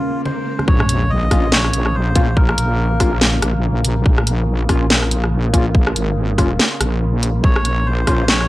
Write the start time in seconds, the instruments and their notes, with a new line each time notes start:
Already playing: synth drone C#3 G#3 C#4, melodica F4, swell
0.25 melodica C5, muted conga, high conga
0.59 cross-stick, high conga
0.68 wobble bass A#1, synth drone C#3 A#3 F4, melodica C#5, kick, sub drop
0.80 cross-stick
0.89 closed hi-hat
1.10 melodica D#5
1.31 wobble bass A#1, synth stab A#3 C#4 F4, kick, cross-stick, open hi-hat
1.52 melodica C#5, snare
1.64 cross-stick
1.73 closed hi-hat
1.86 cross-stick
1.94 melodica C5
2.16 synth stab A#3 C#4 F4, kick, closed hi-hat
2.37 melodica A#4, kick
2.49 cross-stick
2.58 wobble bass A#1, closed hi-hat
3.00 synth stab A#3 C#4 F4, kick, cross-stick, open hi-hat
3.21 snare
3.42 wobble bass A#1, cross-stick, closed hi-hat
3.85 closed hi-hat
4.06 wobble bass A#1, kick
4.18 cross-stick
4.27 closed hi-hat
4.69 wobble bass A#1, synth stab A#3 C#4 F4, kick, cross-stick, open hi-hat
4.90 snare
5.02 cross-stick
5.11 closed hi-hat
5.24 cross-stick
5.53 synth stab A#3 C#4 F4, kick, closed hi-hat
5.75 kick
5.87 cross-stick
5.96 wobble bass G#1, closed hi-hat
6.38 synth stab A#3 C#4 F4, kick, cross-stick, open hi-hat
6.59 snare
6.80 wobble bass A#1, cross-stick, closed hi-hat
7.23 closed hi-hat
7.44 wobble bass A#1, synth drone C3, melodica C#5, kick
7.56 cross-stick
7.65 closed hi-hat
7.86 melodica C5
8.07 wobble bass A#1, synth stab A#3 C#4 F4, kick, cross-stick, open hi-hat
8.28 melodica C#5, snare
8.41 cross-stick